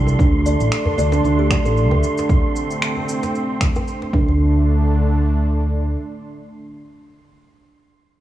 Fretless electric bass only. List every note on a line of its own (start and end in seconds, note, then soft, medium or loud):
0.00 0.14 C2 loud
0.19 0.53 D2 medium
0.60 0.68 A1 medium
0.98 1.17 D2 medium
1.24 1.58 D2 medium
1.65 1.91 A1 medium
1.91 2.00 D2 medium
4.13 5.94 D2 medium